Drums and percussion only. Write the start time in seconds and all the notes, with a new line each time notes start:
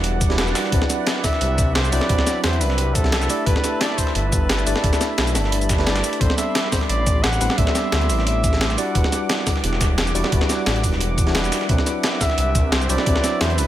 0.04 closed hi-hat
0.21 kick, closed hi-hat, shaker
0.30 snare, closed hi-hat
0.38 snare, closed hi-hat
0.47 snare, shaker
0.55 snare, closed hi-hat, open hi-hat, shaker
0.64 snare
0.72 kick, closed hi-hat
0.82 snare
0.89 snare, closed hi-hat, shaker
1.07 snare, closed hi-hat
1.16 snare
1.24 kick, snare, closed hi-hat, open hi-hat, shaker
1.33 snare
1.41 closed hi-hat
1.58 kick, closed hi-hat, shaker
1.75 snare, closed hi-hat
1.84 closed hi-hat, shaker
1.92 closed hi-hat, open hi-hat, shaker
2.01 snare
2.09 kick, closed hi-hat
2.18 snare
2.27 snare, closed hi-hat, shaker
2.44 snare, closed hi-hat
2.53 closed hi-hat
2.61 closed hi-hat, open hi-hat, shaker
2.70 snare
2.78 closed hi-hat
2.95 kick, closed hi-hat, shaker
3.04 snare, closed hi-hat
3.12 snare, closed hi-hat
3.21 snare, shaker
3.29 closed hi-hat, open hi-hat, shaker
3.46 kick, closed hi-hat
3.56 snare
3.64 snare, closed hi-hat, shaker
3.81 snare, closed hi-hat
3.90 snare
3.98 kick, closed hi-hat, open hi-hat, shaker
4.07 snare
4.15 closed hi-hat
4.32 kick, closed hi-hat, shaker
4.49 snare, closed hi-hat
4.58 closed hi-hat, shaker
4.67 closed hi-hat, open hi-hat, shaker
4.76 snare
4.84 kick, closed hi-hat
4.93 snare, shaker
5.01 snare, closed hi-hat, shaker
5.18 snare, closed hi-hat
5.27 closed hi-hat, shaker
5.35 snare, closed hi-hat, open hi-hat, shaker
5.44 snare
5.52 closed hi-hat
5.61 closed hi-hat, shaker
5.69 kick, snare, closed hi-hat, shaker
5.78 snare, closed hi-hat
5.86 snare, closed hi-hat
5.96 snare, closed hi-hat, shaker
6.04 closed hi-hat, open hi-hat, shaker
6.13 closed hi-hat
6.21 kick, closed hi-hat
6.30 snare
6.38 snare, closed hi-hat, shaker
6.55 snare, closed hi-hat
6.64 snare
6.72 kick, snare, closed hi-hat, open hi-hat, shaker
6.81 snare
6.89 closed hi-hat
7.07 kick, closed hi-hat, shaker
7.24 snare, closed hi-hat
7.33 closed hi-hat, shaker
7.41 closed hi-hat, open hi-hat, shaker
7.50 snare
7.58 kick, closed hi-hat
7.67 snare
7.75 snare, closed hi-hat, shaker
7.92 snare, closed hi-hat
8.01 closed hi-hat
8.09 closed hi-hat, open hi-hat, shaker
8.19 snare
8.27 closed hi-hat
8.44 kick, closed hi-hat, shaker
8.53 snare, closed hi-hat
8.61 snare, closed hi-hat
8.70 snare, shaker
8.78 closed hi-hat, open hi-hat, shaker
8.95 kick, closed hi-hat
9.04 snare
9.12 snare, closed hi-hat, shaker
9.29 snare, closed hi-hat
9.38 snare
9.47 kick, snare, closed hi-hat, open hi-hat, shaker
9.56 snare
9.64 closed hi-hat
9.73 snare
9.81 kick, snare, closed hi-hat, shaker
9.98 snare, closed hi-hat
10.07 closed hi-hat, shaker
10.15 closed hi-hat, open hi-hat, shaker
10.24 snare
10.32 kick, closed hi-hat
10.41 snare
10.49 snare, closed hi-hat, shaker
10.66 snare, closed hi-hat
10.76 closed hi-hat
10.83 kick, closed hi-hat, open hi-hat, shaker
10.92 snare
11.01 closed hi-hat
11.18 kick, closed hi-hat, shaker
11.27 snare, closed hi-hat
11.35 snare, closed hi-hat
11.44 snare, shaker
11.52 snare, closed hi-hat, open hi-hat, shaker
11.61 snare
11.69 kick, closed hi-hat
11.78 snare
11.86 snare, closed hi-hat, shaker
12.03 snare, closed hi-hat
12.13 snare
12.21 kick, snare, closed hi-hat, open hi-hat, shaker
12.30 snare
12.38 closed hi-hat
12.55 kick, closed hi-hat, shaker
12.72 snare, closed hi-hat
12.81 closed hi-hat, shaker
12.89 closed hi-hat, open hi-hat, shaker
12.98 snare
13.06 kick, closed hi-hat
13.15 snare
13.24 snare, closed hi-hat, shaker
13.41 snare, closed hi-hat
13.50 closed hi-hat
13.58 closed hi-hat, open hi-hat, shaker